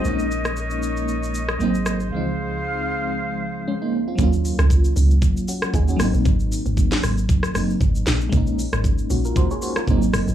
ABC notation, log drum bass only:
X:1
M:4/4
L:1/16
Q:"Swing 16ths" 1/4=116
K:Ebdor
V:1 name="Log drum bass" clef=bass
z16 | z16 | E,,3 D,,3 D,,2 z4 E,,2 A,,, B,,, | A,,,3 A,,,3 A,,,4 G,,,2 A,,,2 B,,,2 |
B,,,3 A,,,3 B,,,2 z4 A,,,2 G,,, A,,, |]